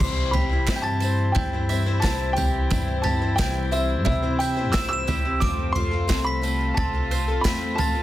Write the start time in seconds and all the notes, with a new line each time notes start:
Already playing: E4 C6
0.00 C2 C3 E3 G3 C4 E4 C5 C7, kick, floor tom, crash, tambourine
0.31 G4 B5 B6, floor tom, tambourine
0.36 G3 C4 E4 C5
0.51 G3 C4 E4 C5
0.67 G2 C3 E3 G3 C4 E4 C5, kick, snare, clap, tambourine
0.76 G5 G6
0.82 A5 A6
1.00 G3 C4 E4 C5, tambourine
1.32 G2 E4 G5 G6, kick, floor tom, tambourine
1.53 G3 C4 E4 C5
1.69 G3 C4 E4 C5 E5, tambourine
1.86 G3 C4 E4 C5
2.00 C2 C3 E3 E4 A5 A6, clap
2.04 G3 C4 E4 C5, kick, snare, tambourine
2.33 G3 G4 G5
2.37 C4 E4 C5 G6, floor tom, tambourine
2.71 G2 C3 E3 G3 C4 E4 C5, kick, floor tom, tambourine
3.02 G3 G4 A5 A6, floor tom, tambourine
3.06 C4 E4 C5
3.21 G3 C4 E4 C5
3.36 C2 C3 E3 G3 C4 E4 C5 G5 G6, kick, snare, clap, tambourine
3.71 G3 C4 E4 C5 E5 E6, tambourine
4.05 C3 E4 E5 E6, kick, floor tom, tambourine
4.22 G3 C4 E4 C5
4.39 G3 C4 E4 C5 E5 G5 G6, tambourine
4.57 G3 C4 E4 C5
4.72 C2 C3 E3 G3 C4 E4 C5 E6 E7, kick, snare, clap, tambourine
4.89 E6
4.93 E7
5.07 G3 C4 E4 G4 C5, floor tom, tambourine
5.25 G3 C4 E4 C5
5.40 F2 F3 A3 C4 F4 A4 D6 D7, kick, floor tom, tambourine
5.72 A3 C4 F4 C6 C7, floor tom, tambourine
5.77 F4 A4
5.91 C4 F4 A4
6.08 C2 F3 A3 C4 F4 A4, kick, snare, clap, tambourine
6.24 B5 B6
6.42 A3 C4 F4 A4, tambourine
6.74 C2 C4 A5 A6, kick, floor tom, tambourine
6.93 C4 F4 A4
7.11 A3 C4 F4 A4 C5, tambourine
7.28 C4 F4 A4
7.41 E2 A3 C4 B5, kick, snare, clap
7.45 F4 A4 B6, tambourine
7.75 A3 C4 F4 A4 A5, floor tom
7.80 A6, tambourine
7.94 C4 F4 A4